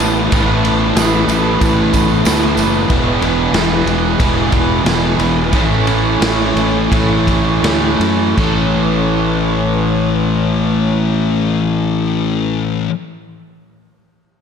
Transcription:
Already playing: distorted electric guitar A2, overdriven electric guitar E3 A3 B3 E4, analog synth pad E4 B4 A5 B5
0.00 fingered electric bass A1, ride, tambourine
0.17 tambourine
0.31 fingered electric bass A1, overdriven electric guitar A2 E3 A3 B3 E4, kick, ride, tambourine
0.63 overdriven electric guitar A3 B3 E4, ride
0.95 fingered electric bass A1, distorted electric guitar A2, overdriven electric guitar E3 A3 B3 E4, snare, ride, tambourine
1.28 fingered electric bass A1, ride, tambourine
1.60 fingered electric bass A1, overdriven electric guitar A2 E3 A3 B3 E4, kick, ride, tambourine
1.93 kick, ride, tambourine
2.09 tambourine
2.24 fingered electric bass D2, distorted electric guitar A2, overdriven electric guitar E3 A3 B3 E4, snare, ride, tambourine
2.42 tambourine
2.57 fingered electric bass F#1, ride, tambourine
2.74 tambourine
2.89 fingered electric bass E1, overdriven electric guitar E2 B2 E3 G#3 B3 E4, analog synth pad G#5, kick, ride
3.21 fingered electric bass E1, overdriven electric guitar E3 G#3 B3 E4, ride
3.52 fingered electric bass E1, distorted electric guitar E2 B2, overdriven electric guitar E3 G#3 B3 E4, snare, ride
3.86 fingered electric bass E1, ride
4.19 fingered electric bass E1, overdriven electric guitar E2 B2 E3 G#3 B3 E4, kick, ride
4.52 fingered electric bass E1, kick, ride
4.84 fingered electric bass E1, distorted electric guitar E2 B2, overdriven electric guitar E3 G#3 B3 E4, snare, ride
5.19 fingered electric bass E1, ride
5.52 fingered electric bass A1, overdriven electric guitar A2 E3 A3 C#4 E4, analog synth pad A4 C#6, kick, ride
5.86 overdriven electric guitar A3 C#4 E4, ride
6.20 fingered electric bass A1, distorted electric guitar A2, overdriven electric guitar E3 A3 C#4 E4, snare, ride
6.56 fingered electric bass A1, ride
6.90 fingered electric bass A1, overdriven electric guitar A2 E3 A3 C#4 E4, kick, ride
7.27 kick, ride
7.61 fingered electric bass D2, distorted electric guitar A2, overdriven electric guitar E3 A3 C#4 E4, snare, ride
8.00 fingered electric bass F#2, ride
8.35 fingered electric bass A1, overdriven electric guitar A2 E3 A3 C#4, analog synth pad A3 E4 B4 C#5, kick, crash
8.39 overdriven electric guitar A4

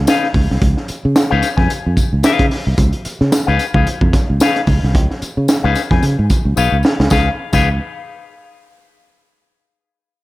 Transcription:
0.07 clean electric guitar D#4 G#4 B4 F5, snare, closed hi-hat, tambourine
0.24 snare
0.34 fingered electric bass C#2, kick, open hi-hat
0.51 fingered electric bass C2, snare
0.62 fingered electric bass C#2, kick, closed hi-hat
0.77 snare
0.88 muted fingered electric bass stroke, closed hi-hat, tambourine
1.05 fingered electric bass C#3
1.16 snare, closed hi-hat, tambourine
1.30 fingered electric bass C#2, clean electric guitar D#4 G#4 B4 F5
1.42 snare, closed hi-hat, tambourine
1.57 fingered electric bass F2, clean electric guitar D#4 G#4 B4 G#5, kick, snare
1.70 muted fingered electric bass stroke, closed hi-hat, tambourine
1.86 fingered electric bass F2
1.97 kick, closed hi-hat, tambourine
2.13 fingered electric bass C#2
2.23 clean electric guitar D#4 G#4 B4 F5, snare, closed hi-hat, tambourine
2.39 fingered electric bass C#3, kick, closed hi-hat
2.51 snare, open hi-hat
2.67 fingered electric bass C2
2.78 fingered electric bass C#2, kick, closed hi-hat, tambourine
2.93 closed hi-hat
3.05 muted fingered electric bass stroke, closed hi-hat, tambourine
3.21 fingered electric bass C#3, snare
3.32 snare, closed hi-hat, tambourine
3.47 fingered electric bass C#2, clean electric guitar D#4 G#4 B4 F5
3.59 closed hi-hat, tambourine
3.74 fingered electric bass C#2, clean electric guitar D#4 G#4 B4 F5, kick
3.87 muted fingered electric bass stroke, closed hi-hat, tambourine
4.01 fingered electric bass F2, kick
4.13 kick, snare, closed hi-hat, tambourine
4.30 fingered electric bass C#2
4.40 clean electric guitar D#4 G#4 B4 F5, snare, closed hi-hat, tambourine
4.56 snare, closed hi-hat
4.67 fingered electric bass C#2, kick, open hi-hat, tambourine
4.83 fingered electric bass C2, snare
4.95 fingered electric bass C#2, kick, closed hi-hat
5.11 snare
5.22 muted fingered electric bass stroke, closed hi-hat, tambourine
5.37 fingered electric bass C#3
5.48 snare, closed hi-hat, tambourine
5.63 fingered electric bass C#2, clean electric guitar D#4 G#4 B4 F5
5.75 snare, closed hi-hat, tambourine
5.91 fingered electric bass F2, clean electric guitar D#4 G#4 B4 G#5, kick, snare
6.02 fingered electric bass C#3, closed hi-hat, tambourine
6.19 fingered electric bass G#2
6.30 kick, closed hi-hat, tambourine
6.45 fingered electric bass C#2
6.56 fingered electric bass B1, clean electric guitar D#4 G#4 B4 F5, tambourine
6.72 fingered electric bass C#2
6.83 snare, tambourine
7.00 fingered electric bass C#2, snare
7.10 fingered electric bass C#2, clean electric guitar D#4 G#4 B4 F5, kick, snare, tambourine
7.53 fingered electric bass C#2, clean electric guitar D#4 G#4 B4 F5, kick, crash, tambourine

